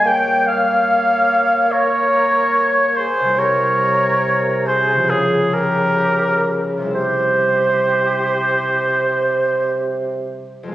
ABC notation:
X:1
M:4/4
L:1/8
Q:1/4=69
K:Cphr
V:1 name="Clarinet"
g f3 d3 c | d3 c A B2 z | c6 z2 |]
V:2 name="Oboe"
g f3 d3 c | d3 c A B2 z | c6 z2 |]
V:3 name="Flute"
d d3 B3 A | B3 A F G2 z | G6 z2 |]
V:4 name="Harp"
[B,,G,FGd]8 | [C,G,=EB]4 [D,F,FA]4 | [C,G,=Ec]8 |]
V:5 name="Bassoon" clef=bass
B,6- B, z | C,4 D,4 | C,6- C, z |]